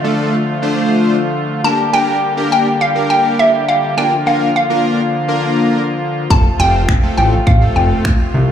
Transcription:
Already playing: D3 F3 A3 F4 D5, downlifter
0.04 A3 D4 F4 A4
0.62 A3 D4 F4 C5
1.64 G3 A#3 D4 G4 A#4 A5
1.93 A#3 D4 G4 A#4 G5
2.37 A#3 D4 G4 A#4
2.52 G5
2.81 F5
2.95 A#3 D4 G4 A#4
3.10 G5
3.39 E5
3.69 F5
3.97 F3 A#3 D4 F4 A#4 G5
4.26 A#3 D4 F4 A#4 F5
4.56 F5
4.70 A#3 D4 F4 A#4
5.28 A#3 D4 F4 A#4
6.30 F1 C3 A3 C4 F4 A4 A5, kick
6.59 F1 A3 C4 F4 C5 G5
6.89 finger snap, kick
7.03 A3 C4 F4 A4
7.18 A1 G5
7.47 A1 F5, kick
7.61 A3 C4 F4 A4
7.76 F1 G5
8.05 finger snap, kick
8.34 C2

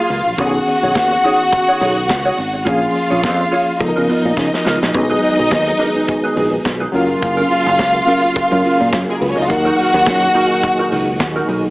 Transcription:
Already playing: F#3 A#3 F4 F#4 G4 G#4 F5
0.09 C#2 A#3 F4 G#4, open hi-hat, shaker
0.25 A#1, muted clean electric guitar stroke, shaker
0.37 B1 D#3 B3 C#4 D#4 F#4 G#4 C#5 F#5, kick, closed hi-hat, shaker
0.46 G#4
0.53 muted clean electric guitar stroke, shaker
0.67 muted clean electric guitar stroke, open hi-hat
0.83 B1 D#4 G#4 C#5, shaker
0.94 D#2, kick, snare, closed hi-hat, shaker
1.11 muted clean electric guitar stroke, shaker
1.23 D#4 G#4 C#5, open hi-hat, shaker
1.40 muted clean electric guitar stroke, shaker
1.51 muted clean electric guitar stroke, kick, closed hi-hat, shaker
1.68 D#4 G#4 C#5, shaker
1.80 B1 D#4 G#4 C#5, open hi-hat, shaker
1.96 muted clean electric guitar stroke, shaker
2.08 C#2, muted clean electric guitar stroke, kick, snare, closed hi-hat, shaker
2.25 D#4 G#4 C#5, shaker
2.37 G#1, muted clean electric guitar stroke, open hi-hat, shaker
2.53 muted clean electric guitar stroke, shaker
2.65 A#1 F3 A#3 C#4 F4 G#4 C#5 F5, kick, closed hi-hat, shaker
2.82 muted clean electric guitar stroke, shaker
2.94 muted clean electric guitar stroke, open hi-hat
3.10 A#1 F4 G#4 C#5, shaker
3.23 F2, kick, snare, closed hi-hat, shaker
3.39 muted clean electric guitar stroke, shaker
3.51 F4 G#4 C#5, open hi-hat, shaker
3.67 muted clean electric guitar stroke, shaker
3.79 C#2 F3 B3 D#4 A4 D#5, muted clean electric guitar stroke, kick, closed hi-hat, shaker
3.89 A#4
3.96 C#3 B3 F4 A#4, shaker
4.08 B3 F4 A#4, open hi-hat, shaker
4.24 A#2, muted clean electric guitar stroke, shaker
4.36 C#3, muted clean electric guitar stroke, kick, snare, shaker
4.53 muted clean electric guitar stroke, snare, shaker
4.64 C#2 B3 F4 A#4, snare, shaker
4.80 A#1, muted clean electric guitar stroke, snare, shaker
4.93 B1 D#3 F#3 G#3 B3 C#4 D#4 G#4 D#5, muted clean electric guitar stroke, kick, closed hi-hat, shaker
5.01 D#4
5.09 D#4 G#4 B4, shaker
5.22 D#4 G#4 B4, open hi-hat
5.38 B1, muted clean electric guitar stroke, shaker
5.50 D#2, muted clean electric guitar stroke, kick, snare, closed hi-hat, shaker
5.67 muted clean electric guitar stroke, shaker
5.79 D#4 G#4 B4, open hi-hat, shaker
5.95 D#4 G#4 B4, shaker
6.08 muted clean electric guitar stroke, kick, closed hi-hat, shaker
6.24 D#4 G#4 B4, shaker
6.36 A#1 D#4 G#4 B4, open hi-hat, shaker
6.52 muted clean electric guitar stroke, shaker
6.65 B1, muted clean electric guitar stroke, kick, snare, closed hi-hat, shaker
6.80 D#4 G#4 B4, shaker
6.92 F#1 C#3 F#3 A#3 C#4 F4 A#4 F5, open hi-hat
7.09 muted clean electric guitar stroke, shaker
7.22 F#1, muted clean electric guitar stroke, kick, closed hi-hat, shaker
7.37 C#4 F4 A#4, shaker
7.50 C#4 F4 A#4, open hi-hat
7.66 F#1, shaker
7.78 C#2, muted clean electric guitar stroke, kick, snare, closed hi-hat, shaker
7.94 muted clean electric guitar stroke, shaker
8.07 C#4 F4 A#4, open hi-hat, shaker
8.24 C#4 F4, shaker
8.36 muted fingered electric bass stroke, muted clean electric guitar stroke, kick, closed hi-hat, shaker
8.52 F#2 C#4 F4 A#4, shaker
8.64 C#4 F4 A#4, open hi-hat, shaker
8.81 A#2, shaker
8.92 F#2, muted clean electric guitar stroke, kick, snare, closed hi-hat, shaker
9.08 G#3 G#4, muted clean electric guitar stroke, shaker
9.16 A#3 A#4
9.21 C#2 B3 B4, open hi-hat
9.29 C#4 C#5
9.36 C#2 D#4 D#5, muted clean electric guitar stroke, shaker
9.42 F4 F5
9.48 D#2 A#2 D#3 F#3 A#3 D#4 F#4 A#4 F#5, muted clean electric guitar stroke, kick, closed hi-hat, shaker
9.65 D#4 F#4 A#4, shaker
9.78 D#4 F#4 A#4, open hi-hat
9.94 D#2, muted clean electric guitar stroke, shaker
10.06 F#2, muted clean electric guitar stroke, kick, snare, closed hi-hat, shaker
10.22 muted clean electric guitar stroke, shaker
10.35 D#4 F#4 A#4, open hi-hat, shaker
10.50 D#4 F#4 A#4, shaker
10.63 muted clean electric guitar stroke, kick, closed hi-hat, shaker
10.79 D#4 F#4 A#4, shaker
10.91 C#2 D#4 F#4 A#4, open hi-hat, shaker
11.07 muted clean electric guitar stroke, shaker
11.20 D#2, muted clean electric guitar stroke, kick, snare, closed hi-hat, shaker
11.36 D#4 F#4 A#4, shaker
11.48 B1 D#4 F#4 A#4, open hi-hat
11.65 muted clean electric guitar stroke, shaker

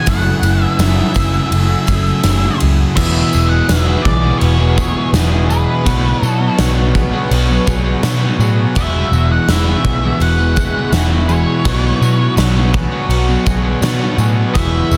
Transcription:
Already playing: E4 F#5
0.06 F#1 F#2 C#3 F#3 A3 E4 G#4 F#5 G#5 E6, kick, ride, tambourine
0.24 tambourine
0.42 F#1 A3 E4 G#4 B4, ride, tambourine
0.64 E5
0.78 F#1 F#2 C#3 F#3 A3 E4 G#4 B4 E5, snare, ride, tambourine
1.14 F#1 C#3 F#3 A3 E4 G#4, kick, ride, tambourine
1.34 tambourine
1.51 F#1 F#2 C#3 F#3 A3 E4 G#4, ride, tambourine
1.87 F#1 A3 E4 G#4, kick, ride, tambourine
2.06 tambourine
2.23 F#1 F#2 C#3 F#3 A3 E4 G#4, snare, ride, tambourine
2.60 C#2 A3 E4 F#4 G#4, ride, tambourine
2.96 E1 E2 B2 E3 F#3 B3 E4 G#4 B4 E5 F#5 G#5 E6, kick, crash, tambourine
3.32 E1 E2 B2 E3 F#3 B3 E4 G#4, tambourine
3.49 B2 E3 F#5
3.68 E1 E2 B2 E3 F#3 B3 E4 F#4 G#4 E5, snare, tambourine, crash
3.86 B2 E3 F#3 B3 E4 G#4
4.02 B1 E3 G#4 D5, muted clean electric guitar stroke, muted distorted electric guitar stroke, kick
4.06 E2 B2, tambourine
4.22 B2 E3 F#3 B3 E4 G#4
4.39 E1 F#4 C#5, crash
4.58 B2 E3 F#3 B3 E4 G#4
4.76 E2 B2 E3 F#3 B3 E4 G#4, kick, tambourine
4.95 F#3 B3 E4 G#4
5.12 E1 E2 B2 E3 F#3 B3 E4 F#4 G#4, snare, tambourine, crash
5.31 B2 E3 F#3 B3 E4 G#4
5.49 E2 B2 E3 F#3 B3 E4 G#4 B4, tambourine
5.85 B1 B2 F#3 B3 D4 E4 F#4 B4 C#5 C#6, kick, tambourine, crash
6.21 B2 F#3 B3 D4 F#4 A4 C#5, tambourine
6.40 F#3 B3
6.57 B1 B2 F#3 B3 D4 F#4 C#5, snare, tambourine, crash
6.75 B3 D4 F#4 C#5
6.79 F#3
6.93 B2 F#3 B3 G#4, muted clean electric guitar stroke, muted distorted electric guitar stroke, kick, tambourine
7.12 F#3 B3 D4 F#4 C#5
7.31 B1 F#4, crash
7.48 F#3 B3 D4 F#4 C#5
7.66 B1 B2 F#3 B3 D4 F#4 G#4 C#5, kick, tambourine
7.84 B3 D4 F#4 C#5
8.02 B2 F#3 B3 D4 F#4 C#5, snare, tambourine, crash
8.22 F#3 B3 D4 F#4 C#5
8.39 A2 B2 F#3 B3 D4 F#4 G#4 C#5, tambourine
8.75 E1 E2 B2 E3 G#3 B3 E4 F#4 G#4 E5 B5, kick, tambourine, crash
9.11 E1 E2 B2 E3 G#3 B3 E4 F#4, tambourine
9.30 B2 E3 F#5
9.48 E1 E2 B2 E3 G#3 B3 E4 F#4 E5, snare, tambourine, crash
9.66 B2 E3 G#3 B3 E4 F#4
9.84 B1 E2 B2 E3 G#4, muted distorted electric guitar stroke, muted clean electric guitar stroke, kick, tambourine
10.03 B2 E3 G#3 B3 E4 F#4
10.20 E1 F#4 F#5, crash
10.39 B2 E3 G#3 B3 E4 F#4
10.56 E2 B2 E3 G#3 B3 E4 F#4 G#4, kick, tambourine
10.75 G#3 B3 E4 F#4
10.92 E1 E2 B2 E3 G#3 B3 E4 F#4, snare, tambourine, crash
11.10 B2 E3 G#3 B3 E4 F#4
11.28 E2 B2 E3 G#3 B3 E4 F#4 G#4 C#5, tambourine
11.65 B1 B2 F#3 B3 D4 E4 F#4 B4 C#5 C#6, kick, tambourine, crash
12.01 B2 F#3 B3 D4 F#4 C#5, tambourine
12.19 F#3 B3
12.37 B1 B2 F#3 B3 D4 F#4 C#5, snare, tambourine, crash
12.55 F#3 B3 D4 F#4 C#5
12.73 B2 F#3 B3 G#4, muted clean electric guitar stroke, muted distorted electric guitar stroke, kick, tambourine
12.92 F#3 B3 D4 F#4 C#5
13.09 B1 F#4, tambourine, crash
13.28 F#3 B3 D4 F#4 C#5
13.45 B1 B2 F#3 B3 D4 F#4 G#4 C#5, kick, tambourine
13.63 B3 D4 F#4 C#5
13.81 B2 F#3 B3 D4 F#4 C#5, snare, tambourine, crash
13.99 B3 D4 F#4 C#5
14.03 F#3
14.18 A2 B2 F#3 B3 D4 F#4 G#4 C#5, tambourine
14.54 E1 E2 B2 E3 G#3 B3 E4 F#4 G#4 E5 B5, kick, tambourine, crash
14.90 E1 E2 B2 E3 G#3 B3 E4 F#4, tambourine

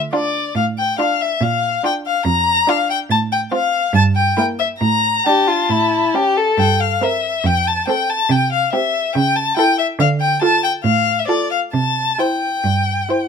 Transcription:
0.13 D4 F4 D5
0.56 A2 F5
0.78 G5
0.98 D4 F4 F5
1.21 E5
1.41 A#2 F5
1.83 D4 F4 G5
2.06 F5
2.25 F2 A#5
2.67 D4 F4 F5
2.90 G5
3.10 A2 A5
3.32 G5
3.51 C4 F4 F5
3.94 G2 A5
4.15 G5
4.36 A#3 E4 G5
4.59 E5
4.80 A2 A#5
5.25 D4 G4 A5
5.48 F4
5.70 A2 E4
6.15 C#4 G4
6.37 A4
6.58 G2 G5
6.80 F5
7.02 C4 A#4 E5
7.44 F2 G5
7.67 A5
7.87 C4 A4 G5
8.10 A5
8.30 C3 G5
8.53 F5
8.73 C4 G4 E5
9.15 C#3 G5
9.36 A5
9.57 E4 A4 G5
9.79 E5
9.99 D3 F5
10.20 G5
10.42 F4 A4 A5
10.64 G5
10.84 A2 F5
11.19 E5
11.28 F4 A4 D5
11.51 F5
11.73 C3 A5
12.19 E4 C5 G5
12.65 G2
13.09 E4 C5

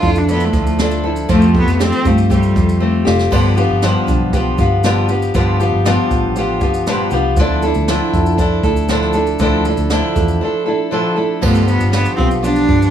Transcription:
Already playing: F3 E4 F4
0.02 F2 A3 D4 E4 A4, kick
0.16 D4, shaker
0.28 F3 B3 D4 E4 A4, shaker
0.40 shaker
0.45 A3
0.53 D2 F3, kick, shaker
0.58 A3
0.67 shaker
0.79 F3 A3 D4 E4 A4, snare, shaker
0.91 snare, shaker
1.03 F3 D4 E4 A4
1.16 shaker
1.29 F2 F3 A3 C4 F4 G4, kick, shaker
1.34 A3
1.41 shaker
1.54 A3, kick
1.58 B3
1.67 F2, shaker
1.79 A3 C4 F4 G4, snare, shaker
1.85 C4
1.92 shaker
2.05 G2 A3 C4 F4 G4, kick, shaker
2.18 shaker
2.30 G3 A3 C4 F4 G4, kick, shaker
2.43 shaker
2.55 F2 A3, kick, shaker
2.69 shaker
2.80 A3 C4 F4 G4
3.05 F1 A3 C4 F4 G4, snare
3.19 snare
3.31 G1 G2 D3 F3 B3 F4 G4, kick, crash
3.57 F3 B3 D4 F4 G4, shaker
3.70 G1
3.82 G2 D3 F3 B3 F4 G4, snare, shaker
4.07 B1 D4, kick, shaker
4.33 F3 B3 F4 G4, kick, shaker
4.58 G1 F3 B3 D4 F4 G4, kick, shaker
4.84 G2 D3 F3 B3 F4 G4, snare, shaker
5.08 F3 B3 D4 F4 G4, shaker
5.22 shaker
5.34 G1 G2 D3 F3 B3 F4 G4, kick, shaker
5.60 F3 B3 D4 F4 G4, shaker
5.73 G1
5.85 G2 D3 F3 B3 F4 G4, snare, shaker
6.11 A1 D4, kick, shaker
6.36 F3 B3 F4 G4, shaker
6.61 G1 F3 B3 D4 F4 G4, kick, shaker
6.74 shaker
6.87 G2 D3 F3 B3 F4 G4, snare, shaker
7.11 C2 B3 D4 F4 G4, shaker
7.15 F3
7.37 D2 D3 F3 D4, kick, shaker
7.41 E4 A4
7.62 A3 E4 A4, shaker
7.67 D4
7.74 D2, shaker
7.88 D3 F3 D4 E4 A4, snare, shaker
8.13 F2 A3, kick, shaker
8.26 shaker
8.38 F3 D4 E4 A4, kick, shaker
8.63 D2 A3 D4 E4 A4, kick, shaker
8.76 shaker
8.88 D3 F3 D4 E4 A4, snare, shaker
9.02 snare
9.13 A3 D4 E4 A4, shaker
9.27 shaker
9.39 D2 D3 F3 D4 E4 A4, kick, shaker
9.65 A3 D4 E4 A4, shaker
9.77 D2, shaker
9.90 D3 F3 D4 E4 A4, snare, shaker
10.15 E2 A3, kick, shaker
10.28 shaker
10.41 F3 D4 E4 A4
10.65 A3 D4 E4 A4
10.91 D3 F3 D4 E4 A4
11.15 A3 D4 E4 A4
11.41 G1 G2 D3 F3 A3 B3 F4 G4, kick, crash
11.55 shaker
11.67 F3 B3, shaker
11.80 G1, shaker
11.92 F3 B3 D4 F4 G4, snare, shaker
12.05 shaker
12.16 B1 F3 B3 C4 F4 G4, kick
12.31 shaker
12.41 F3 B3 D4 F4, shaker
12.45 G4
12.56 shaker
12.68 G1 F3, kick
12.82 shaker

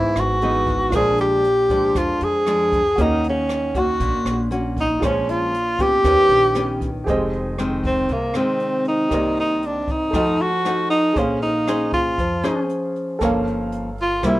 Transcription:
Already playing: G#2 E3 B3 D#4 E4 G#4 B4 D#5
0.16 G#1 F#4, cross-stick, closed hi-hat
0.41 E3 B3 D#4 G#4 B4 D#5, closed hi-hat
0.67 kick, closed hi-hat
0.90 A#1 A#2 F4 A#4, kick, cross-stick, closed hi-hat
0.94 F3 G#3 D4 G#4 C5 D5
1.18 G4, closed hi-hat
1.44 closed hi-hat
1.69 F3 G#3 D4, kick, closed hi-hat
1.95 F2 F4, kick, cross-stick, closed hi-hat
2.20 F2 G#4, closed hi-hat
2.46 F3 G#3 D4, cross-stick, closed hi-hat
2.72 kick, closed hi-hat
2.96 D#2 D#3 A#3 C#4 F#4 A#4 C#5, kick, closed hi-hat
3.01 D#4 D#5
3.24 closed hi-hat
3.29 C#4
3.49 cross-stick, closed hi-hat
3.75 A#3 C#4 F#4, kick, closed hi-hat
3.79 F#4
4.00 A#1 A#2, kick, closed hi-hat
4.25 A#1, cross-stick, closed hi-hat
4.51 A#3 C#4 F#4, closed hi-hat
4.77 D#4, kick, closed hi-hat
5.00 A#1 A#2 F3 G#3 C#4 F4 G#4, kick, cross-stick, closed hi-hat
5.04 C#4 C5 C#5
5.29 F4, closed hi-hat
5.54 closed hi-hat
5.79 B3 C#4 G4, kick, closed hi-hat
6.01 D#2 D#3 G4 A#4, kick, cross-stick, closed hi-hat
6.05 B4 C#5
6.29 A#1, closed hi-hat
6.55 B3 C#4 G4, cross-stick, closed hi-hat
6.81 kick, closed hi-hat
7.04 F1 F2 G4 G#4 C5, kick, closed hi-hat
7.08 D#3 G#3 C4 D#5
7.33 closed hi-hat
7.58 D#3 G#3 C4, cross-stick, closed hi-hat
7.84 C4, kick, closed hi-hat
8.09 C2 C3, kick, closed hi-hat
8.13 A#3
8.34 D#3 G#3 C4, cross-stick, closed hi-hat
8.60 closed hi-hat
8.85 D#4, closed hi-hat
9.09 C2 C3 A#3 G4 A#4 D5, kick, cross-stick, closed hi-hat
9.13 D#3 D#5
9.37 D#4, closed hi-hat
9.62 D4, closed hi-hat
9.88 D#4, kick, closed hi-hat
10.11 F2 F3 A4 C5 D#5, kick, cross-stick, closed hi-hat
10.15 A3 D#4 F#4 F#5
10.40 F#4, closed hi-hat
10.65 A3 D#4 F#4, cross-stick, closed hi-hat
10.90 D#4, closed hi-hat
11.13 A#1 A#3 C#4 G#4 C5, kick, closed hi-hat
11.19 C#4 F5
11.42 D#4, closed hi-hat
11.67 C#4 G#4 C5, cross-stick, closed hi-hat
11.93 F4, kick, closed hi-hat
12.18 F2 F3, kick, closed hi-hat
12.43 C#4 G#4 C5, cross-stick, closed hi-hat
12.69 closed hi-hat
12.96 closed hi-hat
13.19 G1 G2 F3 A#3 C#4 A4 A#4 C#5, kick, cross-stick, closed hi-hat
13.25 F5
13.47 closed hi-hat
13.72 closed hi-hat
13.98 F4, closed hi-hat
14.22 C2 C3 G3 A#3 E4 G4 A#4 C5, kick, cross-stick, closed hi-hat
14.26 E4 E5

